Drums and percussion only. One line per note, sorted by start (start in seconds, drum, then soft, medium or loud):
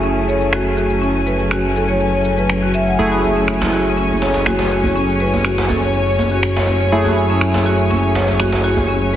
0.03 cabasa soft
0.29 cabasa medium
0.41 cabasa soft
0.53 finger snap loud
0.53 cabasa soft
0.77 cabasa medium
0.89 cabasa medium
1.03 cabasa soft
1.27 cabasa medium
1.39 cabasa medium
1.51 finger snap loud
1.51 cabasa soft
1.76 cabasa medium
1.89 cabasa soft
2.00 cabasa soft
2.25 cabasa medium
2.38 cabasa soft
2.49 finger snap loud
2.49 cabasa soft
2.74 cabasa medium
2.87 cabasa medium
2.99 cabasa soft
3.24 djembe tone medium
3.24 cabasa medium
3.36 cabasa soft
3.47 finger snap loud
3.47 cabasa soft
3.61 djembe slap loud
3.61 djembe tone medium
3.72 cabasa medium
3.85 cabasa soft
3.97 cabasa soft
4.11 djembe tone medium
4.22 djembe slap medium
4.22 cabasa medium
4.34 djembe slap medium
4.34 cabasa soft
4.46 finger snap medium
4.46 djembe tone medium
4.46 cabasa soft
4.59 djembe slap medium
4.71 cabasa medium
4.83 djembe bass medium
4.83 cabasa soft
4.96 djembe tone medium
4.96 cabasa soft
5.21 cabasa medium
5.33 djembe tone medium
5.33 cabasa soft
5.45 finger snap medium
5.45 cabasa soft
5.58 djembe slap medium
5.69 djembe bass medium
5.69 cabasa medium
5.82 djembe tone medium
5.82 cabasa soft
5.94 cabasa soft
6.19 djembe tone medium
6.19 cabasa medium
6.31 cabasa soft
6.43 finger snap medium
6.43 cabasa soft
6.56 djembe slap medium
6.67 djembe tone medium
6.67 cabasa medium
6.81 cabasa soft
6.92 cabasa soft
7.04 djembe tone medium
7.18 cabasa medium
7.30 cabasa soft
7.41 finger snap medium
7.41 cabasa soft
7.54 djembe slap loud
7.54 djembe tone medium
7.66 cabasa medium
7.78 cabasa soft
7.90 djembe tone medium
7.90 cabasa soft
8.15 djembe slap loud
8.15 cabasa medium
8.28 djembe slap medium
8.28 cabasa soft
8.40 finger snap medium
8.40 djembe tone medium
8.40 cabasa soft
8.52 djembe slap medium
8.65 cabasa medium
8.77 djembe tone medium
8.77 djembe bass medium
8.77 cabasa soft
8.89 cabasa soft